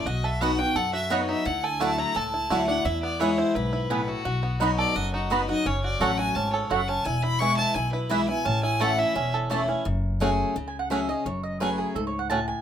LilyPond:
<<
  \new Staff \with { instrumentName = "Fiddle" } { \time 4/4 \key a \major \tempo 4 = 172 dis''8 e''8 fis''8 g''8 fis''8 e''8 cis''8 e''8 | fis''8 gis''8 a''8 bes''8 a''4. fis''8 | e''8 d''8 cis''8 c''8 b'4. fis'8~ | fis'4 r8 d''8 dis''8 fis'8 b'8 dis''8 |
cis''8 d''8 fis''8 gis''8 a''8 cis''8 fis''8 a''8 | gis''8 b''8 cis'''8 a''8 gis''8 b'8 e''8 gis''8 | a''8 gis''8 fis''8 e''4 r4. | \key fis \dorian r1 |
r1 | }
  \new Staff \with { instrumentName = "Mandolin" } { \time 4/4 \key a \major r4 <b fis' dis'' b''>16 r4. r16 <b fis' dis'' b''>16 r8. | r4 <a e' d'' fis''>16 r4. r16 <a e' d'' fis''>16 r8. | r4 <b e' b' gis''>16 r4. r16 <b e' b' gis''>16 r8. | r4 <b fis' dis'' b''>16 r4. r16 <b fis' dis'' b''>16 r8. |
r4 <a fis' cis'' fis''>16 r4. r16 <a fis' cis'' fis''>16 r8. | r4 <b e' b' gis''>16 r4. r16 <b e' b' gis''>16 r8. | r4 <a e' cis'' a''>16 r4. r16 <a e' cis'' a''>16 r8. | \key fis \dorian r2 \tuplet 3/2 { r8 gis''8 fis''8 } e''8 dis''8 |
cis''8 dis''8 b'8 gis'8 \tuplet 3/2 { a'8 cis''8 fis''8 } a''8 gis''8 | }
  \new Staff \with { instrumentName = "Five-string banjo" } { \time 4/4 \key a \major fis'8 a'8 b8 fis'8 a'8 fis'8 b8 dis'8 | e'8 a'8 a8 e'8 a'8 e'8 a8 d'8 | e'8 b8 e'8 e'8 e'8 e'8 b8 e'8 | fis'8 b8 dis'8 a'8 fis'8 dis'8 b8 fis'8 |
cis'8 fis'8 a'8 fis'8 cis'8 a'8 fis'8 cis'8 | e'8 e'8 e'8 e'8 e'8 e'8 e'8 e'8 | cis'8 e'8 a'8 e'8 cis'8 a'8 e'8 cis'8 | \key fis \dorian r4 <a cis' fis'>8 r4. <a cis' fis'>8 r8 |
r4 <a cis' fis'>8 r4. <a cis' fis'>8 r8 | }
  \new Staff \with { instrumentName = "Steel-string acoustic guitar" } { \time 4/4 \key a \major << { r4 <fis b dis' fis'>8 <dis' fis'>8 r4 <fis b dis' fis'>4 | r4 <fis a e' fis'>4 r4 <fis a e' fis'>8 <e' fis'>8 | r4 <e gis b e'>4 r2 | r4 <fis b dis' fis'>4 r4 <fis b dis' fis'>8 <dis' fis'>8 |
r4 <fis a cis' fis'>4 r2 | r4 <e gis b e'>4 r4 <e gis b e'>8 <b e'>8 | r4 <e a cis' e'>4 r4 <e a cis' e'>8 <cis' e'>8 | \key fis \dorian r4 <fis a cis' gis'>4 r4 <fis a cis' gis'>8 <cis' gis'>8 |
r4 <fis a cis' gis'>4 r2 | } \\ { b,2 fis,2 | d2 a,2 | e,2 gis,4 a,4 | b,2 fis,2 |
fis,2 gis,4 fis,4 | e,2 b,2 | a,2 e,2 | fis,2 cis2 |
fis,2 gis,4 a,4 | } >> }
  \new Staff \with { instrumentName = "Upright bass" } { \clef bass \time 4/4 \key a \major b,,2 fis,2 | d,2 cis,4 d,4 | e,2 b,,2 | b,,2 fis,,2 |
fis,,4 a,,4 gis,,4 fis,,4 | e,,2 b,,2 | a,,2 e,,2 | \key fis \dorian fis,,2 cis,2 |
fis,,2 cis,2 | }
>>